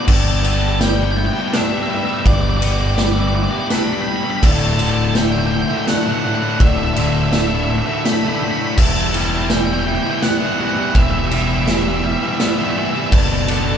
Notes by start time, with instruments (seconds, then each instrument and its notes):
Already playing: clean electric guitar B3 D4, analog synth pad D6
0.06 fingered electric bass G1, distorted electric guitar G2 D3 G3 B3 D4 G4, analog synth pad B4 D5 G5, vibraphone D5, lead electric guitar A5, kick, crash
0.16 lead electric guitar A5
0.24 lead electric guitar A5
0.31 lead electric guitar A5
0.39 distorted electric guitar G3, lead electric guitar A5
0.43 distorted electric guitar B3 D4 G4, lead electric guitar A5, ride
0.54 lead electric guitar A5
0.61 lead electric guitar A5
0.70 lead electric guitar A5
0.79 distorted electric guitar G2 D3 G3 B3 D4 G4, vibraphone D5, lead electric guitar G5, snare, ride
0.89 lead electric guitar G5
0.96 distorted electric guitar B3 D4 G4, lead electric guitar G5
1.01 distorted electric guitar G3, lead electric guitar G5
1.11 lead electric guitar G5
1.16 clean electric guitar B3, vibraphone E5, lead electric guitar G5, muted distorted electric guitar stroke
1.26 lead electric guitar G5
1.33 distorted electric guitar G3 B3 D4 G4, lead electric guitar G5
1.40 lead electric guitar G5
1.48 lead electric guitar G5
1.53 clean electric guitar D4, vibraphone D5, lead electric guitar E5, snare, ride
1.61 lead electric guitar E5
1.69 distorted electric guitar G3 B3 D4 G4, lead electric guitar E5
1.77 lead electric guitar E5
1.83 lead electric guitar E5
1.88 distorted electric guitar G3 B3 D4 G4, lead electric guitar E5
1.98 lead electric guitar E5
2.05 distorted electric guitar G3 B3 D4 G4, lead electric guitar E5
2.14 lead electric guitar E5
2.20 distorted electric guitar G2, lead electric guitar E5
2.25 fingered electric bass G1, distorted electric guitar D3 G3 B3 D4 G4, vibraphone D5, lead electric guitar D5, analog synth pad E6, kick, ride
2.34 lead electric guitar D5
2.41 lead electric guitar D5
2.49 lead electric guitar D5
2.57 distorted electric guitar G3, lead electric guitar D5
2.62 distorted electric guitar B3 D4 G4, lead electric guitar D5, ride
2.72 lead electric guitar D5
2.81 lead electric guitar D5
2.87 lead electric guitar D5
2.96 distorted electric guitar G2 D3 G3 B3 D4, lead electric guitar D5, vibraphone D5, snare, ride
3.00 distorted electric guitar G4
3.05 lead electric guitar D5
3.12 distorted electric guitar G4, lead electric guitar D5
3.16 distorted electric guitar G3 B3 D4, lead electric guitar D5
3.28 lead electric guitar D5
3.34 clean electric guitar B3, lead electric guitar D5, vibraphone E5, muted distorted electric guitar stroke
3.43 lead electric guitar D5
3.51 distorted electric guitar G3 B3 D4 G4, lead electric guitar D5
3.59 lead electric guitar D5
3.70 clean electric guitar D4, vibraphone D5, lead electric guitar B5, snare, ride
3.79 lead electric guitar B5
3.87 distorted electric guitar G3 B3 D4 G4, lead electric guitar B5
3.93 lead electric guitar B5
4.02 distorted electric guitar G3, lead electric guitar B5
4.07 distorted electric guitar B3 D4 G4, lead electric guitar B5
4.16 lead electric guitar B5
4.24 distorted electric guitar G3 B3 D4 G4, lead electric guitar B5
4.30 lead electric guitar B5
4.37 distorted electric guitar D2, lead electric guitar B5
4.43 fingered electric bass D1, distorted electric guitar A2 D3 A3 E4, vibraphone D5, analog synth pad E5 A5, lead electric guitar A5, kick, crash
4.51 lead electric guitar A5
4.59 lead electric guitar A5
4.67 lead electric guitar A5
4.73 lead electric guitar A5
4.79 distorted electric guitar A2 D3 A3 E4, lead electric guitar A5, ride
4.90 lead electric guitar A5
4.98 lead electric guitar A5
5.04 lead electric guitar A5
5.14 distorted electric guitar D2 A2 D3 A3 E4, lead electric guitar G5, snare, ride
5.24 lead electric guitar G5
5.32 distorted electric guitar D3 A3 E4, lead electric guitar G5
5.39 lead electric guitar G5
5.47 lead electric guitar G5
5.51 clean electric guitar D3, vibraphone E5, lead electric guitar G5, muted distorted electric guitar stroke
5.61 lead electric guitar G5
5.69 distorted electric guitar D3 A3 E4, lead electric guitar G5
5.77 lead electric guitar G5
5.87 clean electric guitar A3, vibraphone D5, lead electric guitar F#5, muted distorted electric guitar stroke, snare, ride
5.97 lead electric guitar F#5
6.03 distorted electric guitar A3 E4, lead electric guitar F#5
6.08 distorted electric guitar D3, lead electric guitar F#5
6.18 lead electric guitar F#5
6.23 distorted electric guitar A2 D3 A3 E4
6.27 lead electric guitar F#5
6.35 lead electric guitar F#5
6.41 distorted electric guitar D3 A3 E4, lead electric guitar F#5
6.50 lead electric guitar F#5
6.60 fingered electric bass D1, distorted electric guitar D2 A2 D3 A3 E4, vibraphone D5, lead electric guitar E5, kick, ride
6.69 lead electric guitar E5
6.78 lead electric guitar E5
6.85 lead electric guitar E5
6.94 distorted electric guitar A2, lead electric guitar E5, ride
6.98 distorted electric guitar D3 A3 E4, lead electric guitar E5
7.07 lead electric guitar E5
7.16 lead electric guitar E5
7.23 lead electric guitar E5
7.32 distorted electric guitar D2 A2 D3 A3 E4, vibraphone D5, lead electric guitar E5, snare, ride
7.40 lead electric guitar E5
7.47 distorted electric guitar E4, lead electric guitar E5
7.52 distorted electric guitar D3 A3, lead electric guitar E5
7.63 lead electric guitar E5
7.69 clean electric guitar D3, vibraphone E5, lead electric guitar E5, muted distorted electric guitar stroke
7.78 lead electric guitar E5
7.86 distorted electric guitar D3 A3 E4, lead electric guitar E5
7.94 lead electric guitar E5
8.05 clean electric guitar A3, vibraphone D5, lead electric guitar B5, muted distorted electric guitar stroke, snare, ride
8.13 lead electric guitar B5
8.21 distorted electric guitar A3 E4, lead electric guitar B5
8.26 distorted electric guitar D3, lead electric guitar B5
8.36 lead electric guitar B5
8.41 distorted electric guitar A2 D3 A3 E4, lead electric guitar B5
8.51 lead electric guitar B5
8.58 distorted electric guitar A3 E4, lead electric guitar B5
8.63 distorted electric guitar D3, lead electric guitar B5
8.77 fingered electric bass E1, distorted electric guitar E2 B2 E3 G3 B3 E4, analog synth pad G4 B5, vibraphone E5, lead electric guitar A5, kick, crash
8.87 lead electric guitar A5
8.93 lead electric guitar A5
9.01 lead electric guitar A5
9.07 lead electric guitar A5
9.13 distorted electric guitar E3 G3 B3 E4, lead electric guitar A5, ride
9.24 lead electric guitar A5
9.30 lead electric guitar A5
9.37 lead electric guitar A5
9.45 lead electric guitar A5
9.49 distorted electric guitar E2 B2 E3 G3 B3 E4, vibraphone D5, lead electric guitar G5, snare, ride
9.58 lead electric guitar G5
9.65 distorted electric guitar B3 E4, lead electric guitar G5
9.70 distorted electric guitar E3 G3, lead electric guitar G5
9.80 lead electric guitar G5
9.86 clean electric guitar G3, vibraphone E5, lead electric guitar G5, muted distorted electric guitar stroke
9.95 lead electric guitar G5
10.03 distorted electric guitar G3 B3 E4, lead electric guitar G5
10.07 distorted electric guitar E3, lead electric guitar G5
10.19 clean electric guitar B3, vibraphone D5, lead electric guitar G5, snare, ride
10.23 lead electric guitar F#5, muted distorted electric guitar stroke
10.30 lead electric guitar F#5
10.38 distorted electric guitar B3 E4, lead electric guitar F#5
10.42 distorted electric guitar E3 G3
10.47 lead electric guitar F#5
10.52 lead electric guitar F#5
10.58 distorted electric guitar E3 G3 B3 E4, lead electric guitar F#5
10.68 lead electric guitar F#5
10.75 distorted electric guitar E3 G3 B3 E4, lead electric guitar F#5
10.82 lead electric guitar F#5
10.90 lead electric guitar F#5
10.94 fingered electric bass E1, distorted electric guitar E2 B2 E3 G3 B3 E4, vibraphone E5, lead electric guitar E5, kick, ride
11.03 lead electric guitar E5
11.11 lead electric guitar E5
11.19 lead electric guitar E5
11.27 lead electric guitar E5
11.31 distorted electric guitar E3 G3 B3 E4, lead electric guitar E5, ride
11.42 lead electric guitar E5
11.50 lead electric guitar E5
11.58 lead electric guitar E5
11.66 distorted electric guitar E2 B2 E3 G3, vibraphone D5, lead electric guitar E5, snare, ride
11.70 distorted electric guitar B3 E4, lead electric guitar E5
11.82 distorted electric guitar E4, lead electric guitar E5
11.87 distorted electric guitar E3 G3 B3, lead electric guitar E5
11.97 lead electric guitar E5
12.03 clean electric guitar G3, vibraphone E5, lead electric guitar E5, muted distorted electric guitar stroke
12.12 lead electric guitar E5
12.20 distorted electric guitar B3 E4, lead electric guitar E5
12.24 distorted electric guitar E3 G3
12.29 lead electric guitar E5
12.39 clean electric guitar B3, vibraphone D5, lead electric guitar E5, muted distorted electric guitar stroke, snare, ride
12.48 lead electric guitar E5
12.54 distorted electric guitar E4, lead electric guitar E5
12.59 distorted electric guitar E3 G3 B3, lead electric guitar E5
12.70 lead electric guitar E5
12.76 distorted electric guitar E3 G3 B3 E4, lead electric guitar E5
12.85 lead electric guitar E5
12.93 distorted electric guitar B3 E4, lead electric guitar E5
12.97 distorted electric guitar E3 G3, lead electric guitar E5
13.06 lead electric guitar E5
13.12 fingered electric bass F#1, distorted electric guitar B2 F#3 B3 D4 F#4, analog synth pad A4 F#5 D6, vibraphone D5, lead electric guitar A5, kick, crash
13.16 distorted electric guitar B4, lead electric guitar A5
13.27 lead electric guitar A5
13.34 lead electric guitar A5
13.42 lead electric guitar A5
13.48 distorted electric guitar B3 D4 F#4 B4, lead electric guitar A5, ride
13.58 lead electric guitar A5
13.64 lead electric guitar A5
13.72 lead electric guitar A5